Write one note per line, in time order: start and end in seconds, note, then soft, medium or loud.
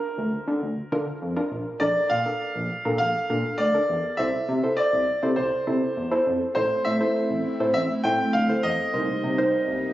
0.00 0.47 D4 medium
0.00 0.47 F4 medium
0.00 0.47 A#4 medium
0.00 1.17 A#4 medium
0.18 0.31 D2 loud
0.48 0.61 D3 medium
0.62 0.76 D2 loud
0.92 1.06 D3 medium
0.92 1.18 D4 medium
0.92 1.17 F4 medium
0.92 1.17 A#4 loud
1.22 1.35 F2 loud
1.36 1.62 D4 medium
1.36 1.62 F4 medium
1.36 1.62 A#4 loud
1.52 1.65 A#1 medium
1.80 1.95 A#1 loud
1.80 2.06 D4 medium
1.80 2.06 A4 medium
1.80 2.07 A#4 medium
1.80 2.11 D5 loud
2.10 2.25 A#2 loud
2.10 2.97 F5 loud
2.26 2.60 D4 medium
2.26 2.60 A4 medium
2.26 2.60 A#4 medium
2.56 2.69 A#1 medium
2.85 2.99 A#2 loud
2.85 3.11 D4 medium
2.85 3.11 A4 medium
2.85 3.11 A#4 medium
2.98 3.14 A#1 loud
2.98 3.60 F5 loud
3.30 3.43 A#2 loud
3.30 3.55 D4 medium
3.30 3.55 A4 medium
3.30 3.55 A#4 medium
3.58 3.73 D2 loud
3.58 4.20 D5 loud
3.74 4.00 D4 medium
3.74 4.00 A4 medium
3.74 4.00 A#4 medium
3.89 4.03 E2 medium
4.17 4.32 C2 loud
4.17 4.44 E4 medium
4.17 4.44 A4 medium
4.17 4.44 C5 medium
4.17 4.79 E5 loud
4.49 4.62 C3 medium
4.63 4.97 E4 medium
4.63 4.97 A4 medium
4.63 4.97 C5 medium
4.77 5.39 D5 loud
4.93 5.07 C2 loud
5.23 5.36 C3 loud
5.23 5.48 E4 medium
5.23 5.48 A4 medium
5.23 5.48 C5 medium
5.36 5.51 C2 loud
5.36 6.22 C5 medium
5.67 5.81 C3 loud
5.67 5.93 E4 medium
5.67 5.92 A4 medium
5.67 5.92 C5 medium
5.97 6.11 E2 medium
6.11 6.37 E4 medium
6.11 6.37 A4 medium
6.11 6.37 C5 loud
6.27 6.40 F2 loud
6.55 6.70 A1 loud
6.55 8.91 A3 medium
6.55 8.91 C4 medium
6.55 8.91 E4 medium
6.55 6.82 E4 medium
6.55 6.82 A4 medium
6.55 6.86 C5 medium
6.55 6.82 C5 medium
6.85 7.00 A2 loud
6.85 7.72 E5 loud
7.01 7.35 E4 medium
7.01 7.35 A4 medium
7.01 7.35 C5 medium
7.31 7.44 A1 medium
7.60 7.74 A2 loud
7.60 7.86 E4 medium
7.60 7.86 A4 medium
7.60 7.86 C5 medium
7.74 7.89 A1 loud
7.74 7.81 E5 loud
8.04 8.18 A2 loud
8.04 8.30 E4 medium
8.04 8.30 A4 medium
8.04 8.30 C5 medium
8.04 8.35 G5 loud
8.33 8.48 D2 medium
8.33 8.61 F5 loud
8.49 8.75 E4 medium
8.49 8.75 A4 medium
8.49 8.75 C5 medium
8.63 8.78 E2 medium
8.63 9.93 D#5 loud
8.94 9.08 C2 loud
8.94 9.93 C3 medium
8.94 9.93 G3 medium
8.94 9.93 A#3 medium
8.94 9.19 D#4 medium
8.94 9.93 D#4 medium
8.94 9.19 A#4 medium
8.94 9.19 C5 medium
9.24 9.37 C3 loud
9.38 9.72 D#4 medium
9.38 9.72 A#4 medium
9.38 9.72 C5 loud
9.68 9.82 C2 medium